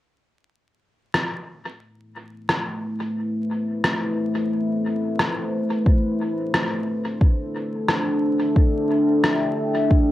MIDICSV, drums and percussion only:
0, 0, Header, 1, 2, 480
1, 0, Start_track
1, 0, Key_signature, 0, "minor"
1, 0, Tempo, 674157
1, 337, Time_signature, 4, 2, 24, 8
1, 7203, End_track
2, 0, Start_track
2, 0, Title_t, "Drums"
2, 813, Note_on_c, 9, 37, 67
2, 884, Note_off_c, 9, 37, 0
2, 1773, Note_on_c, 9, 37, 68
2, 1844, Note_off_c, 9, 37, 0
2, 2734, Note_on_c, 9, 37, 71
2, 2805, Note_off_c, 9, 37, 0
2, 3697, Note_on_c, 9, 37, 69
2, 3768, Note_off_c, 9, 37, 0
2, 4174, Note_on_c, 9, 36, 95
2, 4245, Note_off_c, 9, 36, 0
2, 4655, Note_on_c, 9, 37, 73
2, 4726, Note_off_c, 9, 37, 0
2, 5134, Note_on_c, 9, 36, 99
2, 5205, Note_off_c, 9, 36, 0
2, 5615, Note_on_c, 9, 37, 72
2, 5686, Note_off_c, 9, 37, 0
2, 6095, Note_on_c, 9, 36, 96
2, 6166, Note_off_c, 9, 36, 0
2, 6578, Note_on_c, 9, 37, 76
2, 6649, Note_off_c, 9, 37, 0
2, 7055, Note_on_c, 9, 36, 100
2, 7126, Note_off_c, 9, 36, 0
2, 7203, End_track
0, 0, End_of_file